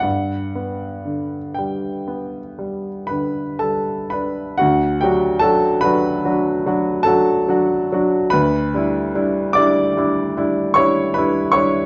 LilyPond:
\new Staff \with { instrumentName = "Grand piano" } { \time 9/8 \key g \major \tempo 4. = 48 << { fis''4. g''4. <b' b''>8 <a' a''>8 <b' b''>8 | \key d \major <fis' fis''>8 <g' g''>8 <a' a''>8 <b' b''>4. <a' a''>4. | <b' b''>4. <d'' d'''>4. <cis'' cis'''>8 <b' b''>8 <cis'' cis'''>8 | } \\ { g,8 b8 d8 g8 b8 g8 d8 g8 d'8 | d,8 <fis d' fis'>8 <fis d' fis'>8 <fis d' fis'>8 <fis d' fis'>8 <fis d' fis'>8 <fis d' fis'>8 <fis d' fis'>8 <fis d' fis'>8 | d,8 <g d' e'>8 <g d' e'>8 <g d' e'>8 <g d' e'>8 <g d' e'>8 <g d' e'>8 <g d' e'>8 <g d' e'>8 | } >> }